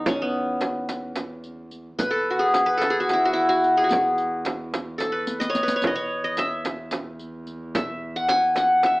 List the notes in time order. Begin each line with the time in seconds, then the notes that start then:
Already playing: E2 D#4 F#4
0.06 C#4, riq, frame drum
0.22 B3
0.61 riq, frame drum
0.89 riq, frame drum
1.16 riq, frame drum
1.44 riq
1.71 riq
1.99 E2 B4, riq, frame drum
2.11 A4
2.30 F#4
2.39 G#4
2.54 riq, frame drum
2.66 B4
2.77 A4, riq
2.82 frame drum
2.90 G#4
3.00 F#4
3.09 riq, frame drum
3.13 E4
3.25 F#4
3.33 E4, riq
3.49 F#4
3.64 riq
3.77 G#4
3.84 F#4
3.89 G#4, riq, frame drum
4.18 riq
4.45 riq, frame drum
4.74 riq, frame drum
4.98 A4, riq, frame drum
5.12 B4
5.27 riq
5.40 D#5, riq
5.50 C#5
5.55 riq
5.63 B4
5.68 riq
5.76 C#5
5.82 E2, riq, frame drum
5.87 D#5
5.96 C#5
6.24 D#5
6.37 E5, riq, frame drum
6.65 riq, frame drum
6.91 riq, frame drum
7.19 riq
7.47 riq
7.75 E5, riq, frame drum
8.16 F#5
8.29 G#5, riq, frame drum
8.56 F#5, riq, frame drum
8.83 E5, riq, frame drum